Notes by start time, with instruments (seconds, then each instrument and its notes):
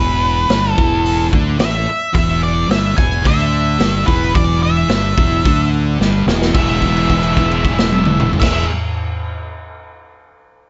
Already playing: fingered electric bass E1, distorted electric guitar E2 E3, lead electric guitar B4
0.49 fingered electric bass G1, distorted electric guitar G2 G3, snare, open hi-hat
0.72 distorted electric guitar E2, lead electric guitar A4
0.77 fingered electric bass E1, distorted electric guitar E3, kick
1.06 open hi-hat
1.31 fingered electric bass D2, distorted electric guitar D3 D4, kick
1.58 fingered electric bass A1, distorted electric guitar A2 A3, lead electric guitar E5, snare, open hi-hat
1.86 muted distorted electric guitar stroke, muted fingered electric bass stroke
2.14 fingered electric bass E1, distorted electric guitar E2 E3, lead electric guitar E5, kick, open hi-hat
2.43 lead electric guitar D5
2.68 fingered electric bass G1, distorted electric guitar G2 G3, lead electric guitar E5, snare, open hi-hat
2.95 fingered electric bass E1, distorted electric guitar E2 E3, lead electric guitar G#5, kick
3.23 fingered electric bass D2, distorted electric guitar D3 D4, kick, open hi-hat
3.27 lead electric guitar E5
3.78 fingered electric bass G1, distorted electric guitar G2 G3, snare, open hi-hat
4.06 fingered electric bass E1, distorted electric guitar E2 E3, lead electric guitar B4, kick
4.34 fingered electric bass E1, distorted electric guitar E2 E3, lead electric guitar D5, kick, open hi-hat
4.63 lead electric guitar E5
4.89 fingered electric bass G1, distorted electric guitar G2 G3, snare, open hi-hat
5.16 fingered electric bass E1, distorted electric guitar E2 E3, kick
5.44 fingered electric bass D2, distorted electric guitar D3 D4, kick, open hi-hat
5.98 fingered electric bass G1, distorted electric guitar G2 G3, snare
6.27 fingered electric bass E1, distorted electric guitar E2 E3, snare
6.42 snare
6.54 fingered electric bass E1, distorted electric guitar E3 G#3 B3 E4 G#4, lead electric guitar E5, kick, crash
6.82 kick, crash
6.97 crash
7.10 kick, crash
7.23 crash
7.37 kick, crash
7.51 crash
7.65 kick, crash
7.79 snare
7.92 high tom
8.05 mid tom
8.20 mid tom
8.33 floor tom
8.40 fingered electric bass E1, distorted electric guitar E3 G#3 B3 E4 G#4, lead electric guitar E5, kick, snare, crash